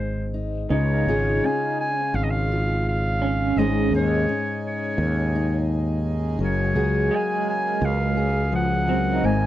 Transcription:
0.00 0.66 G#1 medium
0.00 0.69 G#2 medium
0.00 0.66 G#3 soft
0.00 0.66 C4 soft
0.00 0.33 D#4 soft
0.00 1.08 G#4 medium
0.00 0.31 C5 medium
0.34 0.70 D#4 soft
0.70 1.04 C#2 medium
0.70 3.57 C#3 medium
0.70 6.37 C#3 medium
0.70 9.46 G#3 medium
0.70 1.99 D#4 medium
0.70 3.55 F4 medium
0.70 1.47 C#5 medium
1.05 1.39 G#1 medium
1.05 1.44 C#4 medium
1.05 2.51 F4 medium
1.09 3.60 G#4 medium
1.44 3.58 C#4 medium
1.44 1.80 G#5 loud
1.80 2.17 G#5 loud
2.14 3.53 G#1 loud
2.14 2.25 F5 medium
2.24 2.32 D#5 medium
2.30 2.87 F5 medium
2.52 3.54 F4 medium
2.88 3.59 F5 medium
3.22 3.89 C#4 medium
3.56 3.90 G#1 medium
3.56 6.41 G#2 medium
3.56 6.40 G#3 medium
3.56 3.94 C#4 medium
3.56 3.94 D#4 medium
3.56 6.39 D#4 medium
3.56 6.39 G#4 medium
3.56 3.95 G#4 medium
3.56 3.93 D#5 medium
3.91 4.25 D#2 medium
3.91 4.29 C#4 medium
3.91 5.34 D#4 medium
3.95 6.76 G#4 medium
3.95 4.61 C#5 medium
4.29 6.37 C#4 medium
4.67 5.68 C#5 medium
4.98 6.36 D#2 loud
5.35 6.41 D#4 medium
6.39 6.73 F#1 medium
6.39 9.21 C#3 medium
6.39 8.87 F#3 medium
6.39 9.46 A#3 medium
6.39 9.22 G#4 medium
6.44 7.16 C#5 medium
6.75 7.09 C#2 medium
6.75 7.11 F#4 medium
6.75 8.17 G#4 medium
7.11 8.38 G#3 medium
7.11 7.49 G#5 medium
7.49 7.87 G#5 medium
7.82 9.20 C#2 loud
7.82 8.54 F5 medium
8.17 9.46 G#4 medium
8.52 8.88 F3 medium
8.52 9.26 F#5 loud
8.88 9.24 F#3 medium
8.88 9.46 C4 medium
9.12 9.46 D#4 soft
9.23 9.46 G#1 medium
9.23 9.46 G#2 medium
9.23 9.46 C3 medium
9.23 9.46 D#4 medium
9.23 9.46 G#5 loud

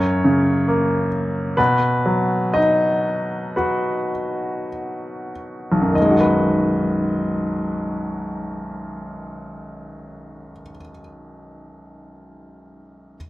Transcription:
0.00 1.55 F#2 soft
0.00 1.08 C#5 medium
0.24 1.55 C#3 soft
0.68 1.56 A#3 soft
1.57 5.93 B2 soft
1.57 2.57 B4 medium
2.06 4.09 F#3 soft
2.54 4.69 D#4 soft
2.54 3.53 D#5 soft
3.56 5.93 F#4 soft
3.56 5.31 B4 soft
5.72 10.51 B1 soft
5.81 10.61 F#2 soft
5.91 10.71 D#3 soft
5.95 10.75 D#5 soft
6.01 10.80 G#3 soft
6.11 10.90 F#4 soft
6.21 11.00 B4 soft

